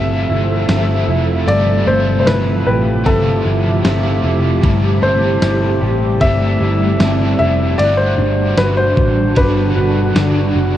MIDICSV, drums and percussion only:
0, 0, Header, 1, 2, 480
1, 0, Start_track
1, 0, Tempo, 789474
1, 898, Time_signature, 4, 2, 24, 8
1, 6549, End_track
2, 0, Start_track
2, 0, Title_t, "Drums"
2, 418, Note_on_c, 9, 54, 67
2, 419, Note_on_c, 9, 38, 104
2, 420, Note_on_c, 9, 51, 58
2, 479, Note_off_c, 9, 54, 0
2, 480, Note_off_c, 9, 38, 0
2, 481, Note_off_c, 9, 51, 0
2, 902, Note_on_c, 9, 51, 55
2, 963, Note_off_c, 9, 51, 0
2, 1380, Note_on_c, 9, 54, 69
2, 1381, Note_on_c, 9, 38, 112
2, 1382, Note_on_c, 9, 51, 60
2, 1441, Note_off_c, 9, 54, 0
2, 1442, Note_off_c, 9, 38, 0
2, 1443, Note_off_c, 9, 51, 0
2, 1859, Note_on_c, 9, 36, 100
2, 1860, Note_on_c, 9, 51, 61
2, 1920, Note_off_c, 9, 36, 0
2, 1920, Note_off_c, 9, 51, 0
2, 2338, Note_on_c, 9, 54, 66
2, 2339, Note_on_c, 9, 38, 107
2, 2340, Note_on_c, 9, 51, 61
2, 2398, Note_off_c, 9, 54, 0
2, 2400, Note_off_c, 9, 38, 0
2, 2401, Note_off_c, 9, 51, 0
2, 2817, Note_on_c, 9, 36, 107
2, 2818, Note_on_c, 9, 51, 57
2, 2878, Note_off_c, 9, 36, 0
2, 2879, Note_off_c, 9, 51, 0
2, 3296, Note_on_c, 9, 38, 110
2, 3296, Note_on_c, 9, 54, 63
2, 3297, Note_on_c, 9, 51, 59
2, 3356, Note_off_c, 9, 54, 0
2, 3357, Note_off_c, 9, 38, 0
2, 3358, Note_off_c, 9, 51, 0
2, 3776, Note_on_c, 9, 51, 64
2, 3777, Note_on_c, 9, 36, 96
2, 3836, Note_off_c, 9, 51, 0
2, 3838, Note_off_c, 9, 36, 0
2, 4254, Note_on_c, 9, 54, 71
2, 4256, Note_on_c, 9, 38, 112
2, 4257, Note_on_c, 9, 51, 64
2, 4315, Note_off_c, 9, 54, 0
2, 4316, Note_off_c, 9, 38, 0
2, 4317, Note_off_c, 9, 51, 0
2, 4738, Note_on_c, 9, 51, 59
2, 4799, Note_off_c, 9, 51, 0
2, 5215, Note_on_c, 9, 54, 69
2, 5216, Note_on_c, 9, 38, 111
2, 5217, Note_on_c, 9, 51, 60
2, 5276, Note_off_c, 9, 54, 0
2, 5277, Note_off_c, 9, 38, 0
2, 5278, Note_off_c, 9, 51, 0
2, 5457, Note_on_c, 9, 36, 97
2, 5517, Note_off_c, 9, 36, 0
2, 5693, Note_on_c, 9, 51, 66
2, 5696, Note_on_c, 9, 36, 107
2, 5754, Note_off_c, 9, 51, 0
2, 5757, Note_off_c, 9, 36, 0
2, 6175, Note_on_c, 9, 54, 69
2, 6176, Note_on_c, 9, 38, 114
2, 6177, Note_on_c, 9, 51, 62
2, 6236, Note_off_c, 9, 54, 0
2, 6237, Note_off_c, 9, 38, 0
2, 6238, Note_off_c, 9, 51, 0
2, 6549, End_track
0, 0, End_of_file